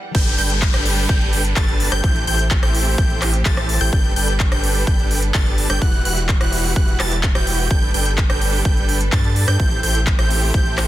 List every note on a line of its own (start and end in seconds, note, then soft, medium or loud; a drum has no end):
0.00 0.13 E2 medium
0.00 0.13 E3 medium
0.00 0.13 G3 medium
0.00 0.13 F#5 medium
0.00 swell medium
0.15 0.36 G1 loud
0.15 2.02 G3 medium
0.15 0.36 D4 medium
0.15 2.02 D4 medium
0.15 0.36 G4 medium
0.15 0.36 A4 medium
0.15 2.02 A4 medium
0.15 0.36 B4 medium
0.15 2.02 B4 medium
0.15 0.36 G5 loud
0.15 0.36 G6 medium
0.15 kick loud
0.15 closed hi-hat medium
0.15 crash loud
0.15 downlifter medium
0.27 closed hi-hat soft
0.38 0.71 G1 medium
0.38 0.55 D4 medium
0.38 0.55 G4 medium
0.38 0.55 A4 medium
0.38 0.55 B4 medium
0.38 0.55 G5 loud
0.38 0.55 G6 loud
0.38 open hi-hat loud
0.50 closed hi-hat medium
0.62 kick loud
0.62 clap loud
0.62 closed hi-hat medium
0.74 1.07 G1 loud
0.74 1.06 D4 medium
0.74 1.06 G4 medium
0.74 1.06 A4 medium
0.74 1.06 B4 medium
0.74 1.06 G5 medium
0.74 1.06 G6 medium
0.74 cross-stick medium
0.74 closed hi-hat soft
0.86 open hi-hat loud
0.97 open hi-hat medium
1.09 1.54 G1 loud
1.09 1.42 D4 medium
1.09 1.42 G4 medium
1.09 1.42 A4 medium
1.09 1.42 B4 medium
1.09 1.42 G5 medium
1.09 1.42 G6 medium
1.09 kick loud
1.09 closed hi-hat medium
1.21 closed hi-hat soft
1.33 open hi-hat loud
1.45 closed hi-hat medium
1.56 1.90 G1 loud
1.56 1.89 D4 medium
1.56 1.89 G4 medium
1.56 1.89 A4 medium
1.56 1.89 B4 medium
1.56 1.89 A5 medium
1.56 1.89 A6 medium
1.56 kick loud
1.56 clap loud
1.56 closed hi-hat medium
1.68 closed hi-hat soft
1.80 open hi-hat loud
1.92 2.01 G1 loud
1.92 2.01 D4 loud
1.92 2.01 G4 medium
1.92 2.01 A4 loud
1.92 2.01 B4 medium
1.92 2.01 G5 loud
1.92 2.01 G6 loud
1.92 cross-stick medium
1.92 closed hi-hat medium
2.04 2.25 A1 loud
2.04 3.91 A3 medium
2.04 3.91 C4 medium
2.04 2.24 E4 loud
2.04 2.24 G4 medium
2.04 3.91 G4 medium
2.04 2.24 A4 medium
2.04 2.24 C5 medium
2.04 2.24 G5 loud
2.04 2.25 G6 loud
2.04 kick loud
2.04 closed hi-hat medium
2.16 closed hi-hat soft
2.27 2.60 A1 medium
2.27 2.44 E4 loud
2.27 2.44 G4 medium
2.27 2.44 A4 medium
2.27 2.44 C5 medium
2.27 2.44 G5 loud
2.27 2.44 G6 loud
2.27 open hi-hat loud
2.39 closed hi-hat medium
2.51 kick loud
2.51 clap loud
2.51 closed hi-hat medium
2.63 2.96 A1 medium
2.63 2.95 E4 medium
2.63 2.95 G4 medium
2.63 2.95 A4 medium
2.63 2.95 C5 medium
2.63 2.95 G5 medium
2.63 2.95 G6 medium
2.63 cross-stick medium
2.63 closed hi-hat soft
2.75 open hi-hat loud
2.86 open hi-hat medium
2.98 3.43 A1 loud
2.98 3.31 G4 medium
2.98 3.31 A4 medium
2.98 3.31 C5 medium
2.98 3.31 G5 medium
2.98 3.31 G6 medium
2.98 kick loud
2.98 closed hi-hat medium
3.10 closed hi-hat soft
3.22 cross-stick medium
3.22 clap medium
3.22 open hi-hat loud
3.34 closed hi-hat medium
3.45 3.79 A1 loud
3.45 3.78 E4 medium
3.45 3.78 G4 medium
3.45 3.78 A4 medium
3.45 3.78 C5 medium
3.45 3.78 A5 medium
3.45 3.78 A6 medium
3.45 kick loud
3.45 clap loud
3.45 closed hi-hat medium
3.57 cross-stick medium
3.57 closed hi-hat soft
3.69 open hi-hat loud
3.81 3.90 A1 loud
3.81 3.90 E4 loud
3.81 3.90 G4 medium
3.81 3.90 A4 loud
3.81 3.90 C5 medium
3.81 3.90 G5 loud
3.81 3.90 G6 loud
3.81 open hi-hat medium
3.93 4.14 G1 loud
3.93 5.80 G3 medium
3.93 5.80 D4 medium
3.93 4.13 D4 medium
3.93 4.13 G4 medium
3.93 5.80 A4 medium
3.93 4.13 A4 medium
3.93 5.80 B4 medium
3.93 4.13 B4 medium
3.93 4.13 G5 loud
3.93 kick loud
3.93 closed hi-hat medium
4.04 closed hi-hat soft
4.16 4.49 G1 loud
4.16 4.33 D4 medium
4.16 4.33 G4 medium
4.16 4.33 A4 medium
4.16 4.33 B4 medium
4.16 4.33 G5 loud
4.16 4.33 G6 loud
4.16 open hi-hat loud
4.28 closed hi-hat medium
4.40 kick loud
4.40 clap loud
4.40 closed hi-hat medium
4.52 4.85 G1 loud
4.52 4.84 D4 medium
4.52 4.84 G4 medium
4.52 4.84 A4 medium
4.52 4.84 B4 medium
4.52 4.84 G5 medium
4.52 4.84 G6 medium
4.52 cross-stick medium
4.52 closed hi-hat soft
4.64 open hi-hat loud
4.75 open hi-hat medium
4.87 5.32 G1 loud
4.87 5.20 D4 medium
4.87 5.20 G4 medium
4.87 5.20 B4 medium
4.87 5.20 G5 medium
4.87 5.20 G6 medium
4.87 kick loud
4.87 closed hi-hat medium
4.99 closed hi-hat soft
5.11 open hi-hat loud
5.23 closed hi-hat medium
5.34 5.67 G1 loud
5.34 5.67 D4 medium
5.34 5.67 G4 medium
5.34 5.67 A4 medium
5.34 5.67 B4 medium
5.34 5.67 A5 medium
5.34 5.67 A6 medium
5.34 kick loud
5.34 clap loud
5.34 closed hi-hat medium
5.46 closed hi-hat soft
5.58 open hi-hat loud
5.70 5.79 G1 loud
5.70 5.79 D4 medium
5.70 5.79 G4 medium
5.70 5.79 A4 medium
5.70 5.79 B4 medium
5.70 5.79 G5 loud
5.70 5.79 G6 loud
5.70 cross-stick medium
5.70 closed hi-hat medium
5.82 6.03 E1 loud
5.82 7.69 E3 medium
5.82 7.69 G3 medium
5.82 7.69 E4 medium
5.82 6.02 E4 medium
5.82 6.02 F#4 medium
5.82 6.02 G4 medium
5.82 6.02 B4 medium
5.82 6.02 F#5 loud
5.82 6.02 F#6 loud
5.82 kick loud
5.82 closed hi-hat soft
5.93 closed hi-hat soft
6.05 6.38 E1 loud
6.05 6.22 E4 medium
6.05 6.22 F#4 medium
6.05 6.22 G4 medium
6.05 6.22 B4 medium
6.05 6.22 F#5 loud
6.05 6.22 F#6 loud
6.05 open hi-hat loud
6.17 closed hi-hat medium
6.29 kick loud
6.29 clap loud
6.29 closed hi-hat medium
6.41 6.74 E1 medium
6.41 6.73 E4 medium
6.41 6.73 F#4 medium
6.41 6.73 G4 medium
6.41 6.73 B4 medium
6.41 6.73 F#5 medium
6.41 6.73 F#6 medium
6.41 cross-stick medium
6.41 closed hi-hat soft
6.52 open hi-hat loud
6.64 open hi-hat medium
6.76 6.97 E1 loud
6.76 6.97 F#6 medium
6.76 kick loud
6.88 closed hi-hat soft
7.00 7.33 E1 loud
7.00 7.16 E4 medium
7.00 7.16 F#4 medium
7.00 7.16 G4 medium
7.00 7.16 B4 medium
7.00 7.16 A5 loud
7.00 7.16 A6 loud
7.00 cross-stick medium
7.00 clap medium
7.00 open hi-hat loud
7.12 closed hi-hat soft
7.23 kick loud
7.23 clap loud
7.23 closed hi-hat medium
7.35 7.68 E1 loud
7.35 7.68 E4 medium
7.35 7.68 F#4 medium
7.35 7.68 G4 medium
7.35 7.68 B4 medium
7.35 7.68 G5 loud
7.35 7.68 G6 loud
7.35 cross-stick medium
7.35 closed hi-hat soft
7.47 open hi-hat loud
7.59 open hi-hat medium
7.71 7.92 G1 loud
7.71 9.58 G3 medium
7.71 9.58 D4 medium
7.71 7.91 D4 medium
7.71 7.91 G4 medium
7.71 7.91 A4 medium
7.71 9.58 A4 medium
7.71 9.58 B4 medium
7.71 7.91 B4 medium
7.71 7.91 G5 loud
7.71 7.91 G6 loud
7.71 kick loud
7.71 closed hi-hat medium
7.82 closed hi-hat soft
7.94 8.27 G1 loud
7.94 8.11 D4 loud
7.94 8.11 G4 medium
7.94 8.11 A4 medium
7.94 8.10 B4 medium
7.94 8.10 G5 loud
7.94 8.11 G6 loud
7.94 open hi-hat loud
8.06 closed hi-hat medium
8.18 kick loud
8.18 clap loud
8.18 closed hi-hat medium
8.30 8.63 G1 medium
8.30 8.62 D4 medium
8.30 8.62 G4 medium
8.30 8.62 A4 medium
8.30 8.62 B4 medium
8.30 8.62 G5 medium
8.30 8.62 G6 medium
8.30 cross-stick medium
8.30 closed hi-hat soft
8.41 open hi-hat loud
8.53 open hi-hat medium
8.65 9.10 G1 loud
8.65 8.98 D4 medium
8.65 8.98 G4 medium
8.65 8.98 A4 medium
8.65 8.98 G5 medium
8.65 8.98 G6 medium
8.65 kick loud
8.65 closed hi-hat medium
8.77 closed hi-hat soft
8.89 open hi-hat loud
9.01 closed hi-hat medium
9.12 9.45 G2 loud
9.12 9.45 D4 medium
9.12 9.45 G4 medium
9.12 9.45 A4 medium
9.12 9.45 B4 medium
9.12 9.45 A5 medium
9.12 9.45 A6 medium
9.12 kick loud
9.12 clap loud
9.12 closed hi-hat medium
9.24 closed hi-hat soft
9.36 open hi-hat loud
9.48 9.57 G2 loud
9.48 9.57 D4 loud
9.48 9.57 G4 medium
9.48 9.57 A4 medium
9.48 9.57 B4 loud
9.48 9.57 G5 loud
9.48 9.57 G6 loud
9.48 cross-stick medium
9.48 closed hi-hat medium
9.60 9.81 A1 loud
9.60 10.88 A3 medium
9.60 10.88 C4 medium
9.60 9.80 E4 medium
9.60 10.88 G4 medium
9.60 9.80 A4 medium
9.60 9.80 G6 loud
9.60 kick loud
9.60 closed hi-hat medium
9.71 closed hi-hat soft
9.83 10.16 A1 medium
9.83 9.99 E4 medium
9.83 9.99 G4 medium
9.83 9.99 A4 medium
9.83 9.99 C5 medium
9.83 9.99 G5 loud
9.83 9.99 G6 loud
9.83 open hi-hat loud
9.95 closed hi-hat medium
10.07 kick loud
10.07 clap loud
10.07 closed hi-hat medium
10.19 10.52 A1 loud
10.19 10.51 E4 medium
10.19 10.51 G4 medium
10.19 10.51 A4 medium
10.19 10.51 C5 medium
10.19 10.51 G5 medium
10.19 10.51 G6 medium
10.19 cross-stick medium
10.19 closed hi-hat soft
10.30 open hi-hat loud
10.42 open hi-hat medium
10.54 10.88 A1 loud
10.54 10.87 A4 medium
10.54 10.87 G6 medium
10.54 kick loud
10.54 closed hi-hat medium
10.66 closed hi-hat soft
10.78 cross-stick medium
10.78 clap medium
10.78 open hi-hat loud